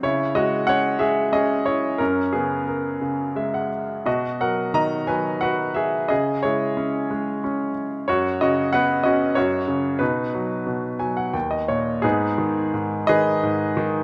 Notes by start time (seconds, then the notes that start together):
0.03 C#3 E4 C#5
0.35 G#3 F#4 D#5
0.67 C#4 C#5 F#5
0.99 G#3 G#4 E5
1.32 C#4 G#4 D#5
1.66 E4 C#5
1.98 F#2 C#4 A#4
2.33 C#3 B3 G#4
2.68 A#4
3.01 C#3
3.36 G#3 E5
3.54 F#5
4.06 B2 F#4 D#5
4.40 F#3 A#4 F#5
4.74 D#3 D#5 A#5
5.07 F#3 B4 G#5
5.41 F#4 B4 F#5
5.74 G#4 E5
6.08 C#3 G#4 D#5
6.43 G#3 E4 C#5
6.77 C#4
7.11 G#3
7.44 C#4
8.08 F#2 F#4 C#5
8.41 C#3 F#4 D#5
8.73 B3 B4 F#5
9.03 C#4 F#4 D#5
9.35 F#2 F#4 C#5
9.68 C#3
9.99 B2 D#4 B4
10.34 F#3
10.67 B2
10.99 F#3 G#5
11.17 F#5
11.33 D#2 G5
11.51 D#5
11.68 A#2 C#5
12.02 G#2 B3 D#4 G#4
12.38 D#3
12.74 G#2
13.07 D#3 G#4 B4 D#5
13.43 G#2
13.77 D#3